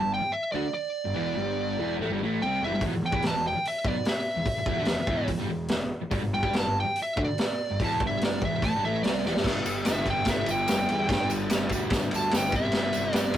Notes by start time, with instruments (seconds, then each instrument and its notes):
Already playing: lead electric guitar A5
0.00 picked electric bass G1, distorted electric guitar G2
0.14 lead electric guitar G5
0.22 muted distorted electric guitar stroke, muted picked electric bass stroke
0.32 lead electric guitar E5
0.52 picked electric bass D2, distorted electric guitar D3 D4, lead electric guitar D5
0.74 lead electric guitar D5
1.05 picked electric bass G1, distorted electric guitar G2
1.14 picked electric bass E1, distorted electric guitar E2 E3
1.36 picked electric bass G1, distorted electric guitar G2 G3
1.78 picked electric bass E1, distorted electric guitar E2 E3
1.99 picked electric bass A1, distorted electric guitar A2 A3
2.09 picked electric bass G1, distorted electric guitar G2 G3
2.20 picked electric bass A1, distorted electric guitar A2 A3
2.41 picked electric bass C2, distorted electric guitar C3, lead electric guitar G5
2.45 distorted electric guitar C4
2.62 picked electric bass E1, distorted electric guitar E2 E3, lead electric guitar E5
2.71 picked electric bass G1, distorted electric guitar G2 G3
2.81 picked electric bass E1, distorted electric guitar E2, kick, open hi-hat
2.85 distorted electric guitar E3
2.94 picked electric bass E1, distorted electric guitar E2
3.03 picked electric bass E1, distorted electric guitar E2, lead electric guitar G5
3.12 picked electric bass E2, distorted electric guitar E3 E4, kick
3.22 picked electric bass E1, distorted electric guitar E2 E3, snare, open hi-hat
3.27 lead electric guitar A5
3.34 picked electric bass E1, distorted electric guitar E2
3.47 lead electric guitar G5
3.56 muted distorted electric guitar stroke, muted picked electric bass stroke
3.65 lead electric guitar E5, open hi-hat
3.85 picked electric bass B1, distorted electric guitar B2 B3, lead electric guitar D5, kick
4.05 lead electric guitar E5, snare, open hi-hat
4.36 picked electric bass E1, distorted electric guitar E2
4.46 muted picked electric bass stroke, muted distorted electric guitar stroke, kick, open hi-hat
4.57 muted picked electric bass stroke, muted distorted electric guitar stroke
4.66 picked electric bass E1, distorted electric guitar E2 E3, kick
4.77 picked electric bass D2, distorted electric guitar D3 D4
4.85 picked electric bass E1, distorted electric guitar E2, snare, open hi-hat
4.98 muted picked electric bass stroke, muted distorted electric guitar stroke
5.07 picked electric bass E1, distorted electric guitar E2 E3, kick
5.28 picked electric bass E1, distorted electric guitar E2, kick, open hi-hat
5.38 picked electric bass G1, distorted electric guitar G2 G3
5.48 picked electric bass E1, distorted electric guitar E2
5.68 picked electric bass E1, distorted electric guitar E2, snare, open hi-hat
6.01 muted distorted electric guitar stroke, muted picked electric bass stroke
6.10 picked electric bass G1, distorted electric guitar G2 G3, kick, open hi-hat
6.23 picked electric bass G1, distorted electric guitar G2
6.34 picked electric bass G1, distorted electric guitar G2, lead electric guitar G5
6.43 picked electric bass G2, distorted electric guitar G3 G4, kick
6.53 picked electric bass G1, distorted electric guitar G2 G3, snare, open hi-hat
6.59 lead electric guitar A5
6.64 picked electric bass G1, distorted electric guitar G2
6.80 lead electric guitar G5
6.85 muted distorted electric guitar stroke, muted picked electric bass stroke
6.96 open hi-hat
7.02 lead electric guitar E5
7.17 picked electric bass D2, distorted electric guitar D3 D4, kick
7.25 lead electric guitar D5
7.38 lead electric guitar D5, snare, open hi-hat
7.70 picked electric bass G1, distorted electric guitar G2
7.80 picked electric bass E1, distorted electric guitar E2 E3, kick, open hi-hat
7.84 lead electric guitar A5
8.00 picked electric bass G1, distorted electric guitar G2 G3, kick
8.07 lead electric guitar E5
8.21 lead electric guitar D5, snare, open hi-hat
8.42 picked electric bass E1, distorted electric guitar E2 E3, lead electric guitar E5, kick
8.62 picked electric bass A1, distorted electric guitar A2 A3, lead electric guitar A5, kick, open hi-hat
8.73 picked electric bass G1, distorted electric guitar G2 G3
8.84 picked electric bass A1, distorted electric guitar A2 A3, lead electric guitar E5
9.03 picked electric bass C2, distorted electric guitar C3 C4, lead electric guitar D5, snare, open hi-hat
9.25 picked electric bass E1, distorted electric guitar E2 E3, lead electric guitar D5, snare
9.35 picked electric bass G1, distorted electric guitar G2 G3, snare
9.44 picked electric bass G1, distorted electric guitar G2 D3 G3, kick, snare, crash, tambourine
9.66 picked electric bass G1, ride, tambourine
9.85 picked electric bass G1, distorted electric guitar G2 D3 G3, lead electric guitar E5, snare, ride, tambourine
10.05 picked electric bass G1, distorted electric guitar G2 D3 G3, kick, ride
10.10 lead electric guitar G5
10.25 picked electric bass G1, distorted electric guitar G2 D3, kick, snare, ride, tambourine
10.29 distorted electric guitar G3, lead electric guitar E5
10.46 picked electric bass G1, ride, tambourine
10.51 lead electric guitar G5
10.67 picked electric bass G1, distorted electric guitar G2 D3, snare, ride, tambourine
10.72 distorted electric guitar G3
10.89 picked electric bass E2, distorted electric guitar G2 D3 G3, ride, tambourine
11.09 picked electric bass G2, distorted electric guitar G2 D3 G3, kick, snare, ride, tambourine
11.30 picked electric bass G1, ride, tambourine
11.49 picked electric bass G1, distorted electric guitar G2 D3 G3, snare, ride, tambourine
11.69 picked electric bass D2, distorted electric guitar G2 D3, kick, ride, tambourine
11.74 distorted electric guitar G3
11.90 picked electric bass D2, distorted electric guitar G2 D3 G3, kick, snare, ride, tambourine
12.11 picked electric bass D2, ride, tambourine
12.16 lead electric guitar A5
12.31 picked electric bass G1, distorted electric guitar G2 D3 G3, snare, ride, tambourine
12.37 lead electric guitar G5
12.52 picked electric bass G1, distorted electric guitar C3 G3 C4, lead electric guitar E5, kick, ride, tambourine
12.72 picked electric bass G1, distorted electric guitar C3 G3 C4, snare, ride
12.77 tambourine
12.93 picked electric bass G1, ride, tambourine
13.13 picked electric bass G1, distorted electric guitar C3 G3 C4, lead electric guitar D5, snare, ride, tambourine
13.34 picked electric bass G1, ride